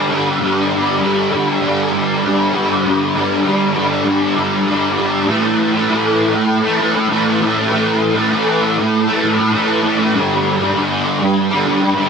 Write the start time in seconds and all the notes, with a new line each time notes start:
Already playing: G2 D3
0.09 D3 G3
0.39 G2 D3 G3
0.70 D3 G3
1.01 G2 D3 G3
1.31 D3 G3
1.61 G2 D3 G3
1.92 D3 G3
2.24 G2 D3 G3
2.54 D3 G3
2.85 G2 D3 G3
3.15 D3 G3
3.45 G2 D3 G3
3.75 D3 G3
4.05 G2 D3 G3
4.35 D3 G3
4.66 G2 D3 G3
4.98 D3 G3
5.27 A2 E3 A3
5.74 E3 A3
5.89 A2 E3 A3
6.34 muted distorted electric guitar stroke
6.63 E3 A3
6.79 A2 E3 A3
6.94 muted distorted electric guitar stroke
7.08 A2 E3 A3
7.40 A2 E3 A3
7.55 E3 A3
7.69 A2 E3 A3
8.14 A3
8.18 E3
8.30 A2 E3 A3
8.79 muted distorted electric guitar stroke
9.07 E3 A3
9.22 A2 E3 A3
9.39 muted distorted electric guitar stroke
9.52 A2 E3 A3
9.82 A2 E3
9.86 A3
9.98 E3 A3
10.14 G2 D3 G3
10.59 D3 G3
10.74 G2 D3 G3
11.21 muted distorted electric guitar stroke
11.50 G3
11.54 D3
11.65 G2 D3 G3
11.81 muted distorted electric guitar stroke
11.95 G2 D3 G3